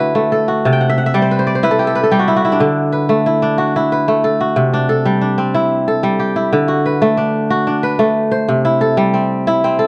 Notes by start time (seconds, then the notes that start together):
Already playing: D3 A3 D4 E4 F#4
0.00 B4
0.15 A3
0.32 A4
0.48 F#4
0.65 C3 A5
0.73 G5
0.81 F#5
0.90 E5
0.98 F#5
1.06 E5
1.14 G3 D5
1.22 C5
1.31 B4
1.39 C5
1.47 D5
1.55 C5
1.63 E4 B4
1.71 A4
1.79 G4
1.87 A4
1.95 B4
2.04 A4
2.12 G3 G4
2.19 F#4
2.28 E4
2.36 F#4
2.45 E4
2.52 D4
2.60 D3
2.92 B4
3.09 A3
3.26 E4
3.42 D4
3.58 F#4
3.76 E4
3.92 B4
4.08 A3
4.24 A4
4.41 F#4
4.56 C3
4.74 D4
4.89 A4
5.05 G3
5.21 D4
5.38 C4
5.55 E4
5.88 A4
6.03 G3
6.20 G4
6.36 E4
6.53 D3
6.68 F#4
6.86 B4
7.02 A3
7.17 D4
7.50 F#4
7.67 D4
7.83 B4
7.99 A3
8.32 C5
8.49 C3
8.65 E4
8.81 A4
8.97 G3
9.14 C4
9.47 E4
9.64 C4
9.79 A4